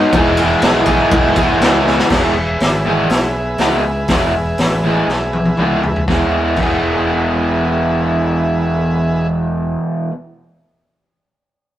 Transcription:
Already playing: overdriven electric guitar B2 F#3 B3 D#4 F#4
0.13 fingered electric bass E1, overdriven electric guitar E2 B2 E3 G#3 B3, transistor combo organ G#4 B4 E5, kick, ride
0.18 overdriven electric guitar G#4
0.37 overdriven electric guitar B3 G#4, ride
0.41 overdriven electric guitar E3 G#3
0.62 fingered electric bass B1, overdriven electric guitar E3 G#3 B3, snare, ride
0.66 overdriven electric guitar G#4
0.86 overdriven electric guitar B3 G#4, kick, ride
0.90 overdriven electric guitar E3 G#3
1.11 fingered electric bass B1, kick, ride
1.36 overdriven electric guitar B3 G#4, kick, ride
1.40 overdriven electric guitar E3 G#3
1.60 fingered electric bass C#2, overdriven electric guitar E2 B2 E3 G#3, snare, ride
1.65 overdriven electric guitar B3 G#4
1.87 snare
1.99 snare
2.10 fingered electric bass E1, overdriven electric guitar E2 B2 E3 G#3, transistor combo organ G#4 B4 E5, kick, snare, crash
2.15 overdriven electric guitar B3 G#4
2.60 fingered electric bass G#1, snare, open hi-hat
2.86 overdriven electric guitar E2 B2 E3 G#3 B3 G#4
3.10 fingered electric bass B1, snare, open hi-hat
3.58 fingered electric bass C#2, overdriven electric guitar E2 B2 E3 G#3, snare, open hi-hat
3.62 overdriven electric guitar B3 G#4
4.08 fingered electric bass E1, overdriven electric guitar E2 B2, kick, snare, open hi-hat
4.12 overdriven electric guitar E3 G#3 B3 G#4
4.58 fingered electric bass A1, snare, open hi-hat
4.84 overdriven electric guitar E2 B2 E3 G#3 B3 G#4
5.08 fingered electric bass B1, snare
5.33 high tom
5.45 high tom
5.57 fingered electric bass C#2, overdriven electric guitar E2 B2 E3, mid tom
5.61 overdriven electric guitar G#3 B3 G#4
5.83 floor tom
5.96 floor tom
6.08 fingered electric bass E1, overdriven electric guitar E2 B2 E3 G#3 B3, transistor combo organ G#4 B4 E5, kick, snare
6.12 overdriven electric guitar G#4
6.56 fingered electric bass E1, overdriven electric guitar E2 B2, kick, crash
6.61 overdriven electric guitar E3 G#3 B3 G#4

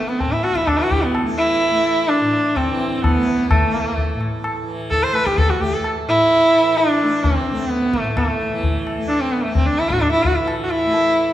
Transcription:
Already playing: tanpura A2 E3 A3
0.08 sarangi B3, tabla te
0.19 sarangi C4, tabla tin, tabla ge
0.25 tanpura A2
0.32 sarangi E4
0.43 sarangi F#4, tabla na
0.55 sarangi E4, tabla ke
0.67 sarangi D4, tabla na, tabla ge
0.73 tanpura E3
0.79 sarangi F#4
0.91 sarangi G4, tabla ge
1.02 sarangi B3
1.15 tabla na
1.23 tanpura A3
1.38 sarangi E4
1.62 tabla tin
1.71 tanpura A3
1.85 tabla na
2.08 sarangi D4, tabla tin
2.20 tanpura A2
2.56 sarangi C4, tabla na, tabla ge
2.69 tanpura E3
2.80 tabla te
2.97 sarangi C4
3.02 sarangi B3, tabla na, tabla ge
3.17 tanpura A3
3.27 tabla te
3.50 sarangi A3, tabla na, tabla ge
3.66 tanpura A3
3.98 tabla tin, tabla ge
4.15 tanpura A2
4.21 tabla na
4.44 tabla na
4.63 tanpura E3
4.90 sarangi A4, tabla tin, tabla ge
5.03 sarangi C5
5.12 tanpura A3, sarangi B4, tabla na
5.25 sarangi G4, tabla ke
5.37 sarangi A4, tabla na, tabla ge
5.49 sarangi F#4
5.60 tanpura A3, sarangi G4, tabla ge
5.73 sarangi A4
5.84 tabla na
6.08 tanpura A2, sarangi E4
6.30 tabla tin
6.54 tanpura E3, tabla na
6.77 sarangi D4, tabla tin
7.01 tanpura A3, tabla na
7.23 sarangi C4, tabla tin, tabla ge
7.51 tanpura A3
7.70 sarangi B3, tabla te
7.82 tabla te
7.93 tabla ke
8.00 tanpura A2, sarangi A3
8.05 tabla te
8.17 sarangi A3, tabla na, tabla ge
8.49 tanpura E3
8.63 tabla tin, tabla ge
8.87 tabla na
8.96 tanpura A3
9.08 sarangi D4, tabla na
9.20 sarangi C4
9.32 sarangi B3
9.43 sarangi A3, tanpura A3
9.55 sarangi C4, tabla tin, tabla ge
9.66 sarangi D4
9.79 sarangi E4, tabla na
9.89 tanpura A2, sarangi F#4, tabla ke
10.00 sarangi D4, tabla na, tabla ge
10.12 sarangi E4
10.23 sarangi F#4, tabla ge
10.35 tanpura E3, sarangi E4
10.48 tabla na
10.64 sarangi F#4
10.70 sarangi E4, tabla na
10.85 tanpura A3
10.94 tabla tin

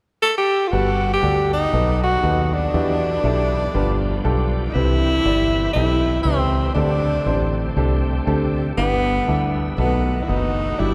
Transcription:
0.22 tenor saxophone A4
0.38 tenor saxophone G4
0.67 tenor saxophone F4
0.72 fingered electric bass G1, upright piano G2 G3 F#4 A4 B4, tonewheel organ G3 B3 A4 F#5, tenor saxophone F#4
1.13 tenor saxophone G4
1.23 fingered electric bass D2, upright piano F#4 G4 A4 D5
1.53 tenor saxophone D#4
1.72 fingered electric bass B1, upright piano B2 D#4 F#4 A4 B4, tonewheel organ F#3 B3 C4 A4
1.78 tonewheel organ D#4
2.04 tenor saxophone F#4
2.23 fingered electric bass D#2, upright piano D#4 F#4 A4 B4
2.53 tenor saxophone D4
2.74 fingered electric bass E2, tonewheel organ E3 B3 D4 G4, upright piano E3 D4 E4 G4 B4
3.24 fingered electric bass B1, upright piano D4 E4 G4 A4
3.73 fingered electric bass G1, upright piano G2 D4 F4 G4 B4, tonewheel organ F3 A#3 D4 G4
3.80 tonewheel organ B3
4.24 fingered electric bass B1, upright piano D4 F4 G4 A4
4.68 tenor saxophone D#4
4.73 fingered electric bass C2, upright piano C3 C4 E4 G4 B4, tonewheel organ E3 C4 G4 B4, tenor saxophone E4
5.25 fingered electric bass G1, upright piano C4 E4 G4 D5
5.73 fingered electric bass B1, upright piano C4 E4 G4 A4, tenor saxophone E4
6.23 fingered electric bass C#2, tenor saxophone C4, upright piano C4 E4 G4 B4
6.75 fingered electric bass D2, tonewheel organ D3 A3 C4 G4, upright piano D3 C4 D4 G4 A4, tenor saxophone D4
7.26 fingered electric bass A1, upright piano C4 D4 G4 C5
7.77 fingered electric bass C2, upright piano C4 D4 G4 A4
8.27 fingered electric bass D2, upright piano C4 D4 G4 A4
8.77 fingered electric bass G1, upright piano G2 B3 D4 E4 G4, tonewheel organ D3 G3 B3 D#4, tenor saxophone B3
8.83 tonewheel organ E4
9.28 fingered electric bass D2, upright piano B3 D4 E4 A4
9.78 fingered electric bass B1, upright piano B2 B3 D#4 F#4 A4, tonewheel organ D#3 A3 B3 F4, tenor saxophone B3
9.85 tonewheel organ F#4
10.23 tenor saxophone E4
10.28 fingered electric bass F#1, upright piano B3 D#4 F#4 B4, tenor saxophone D#4
10.78 fingered electric bass G1, upright piano G2 D4 E4 F#4 G4, tonewheel organ E3 G3 D4 F#5, tenor saxophone E4

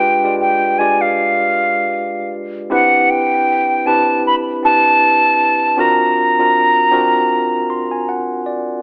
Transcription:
Already playing: tine electric piano G#3 D4 F4 G4 B4, flute G5
0.24 tine electric piano G#3 D4 F4 G4 D5
0.41 flute G5
0.79 tine electric piano G#3 D4 F4 G4 D5, flute G#5
1.01 flute F5
2.70 tine electric piano C4 D4 E4 G4 B4, flute F#5
3.10 flute G5
3.86 tine electric piano C4 D4 E4 G4 B4, flute A5
4.27 flute B5
4.63 tine electric piano C4 D4 E4 G4 B4, flute A5
5.77 tine electric piano C4 D4 F4 F#4 A#4, flute A#5
6.39 tine electric piano C4 D4 F4 F#4 A#4
6.91 tine electric piano C4 D4 F4 F#4 A#4
7.70 tine electric piano C6
7.91 tine electric piano G#5
8.09 tine electric piano F#5
8.46 tine electric piano D5

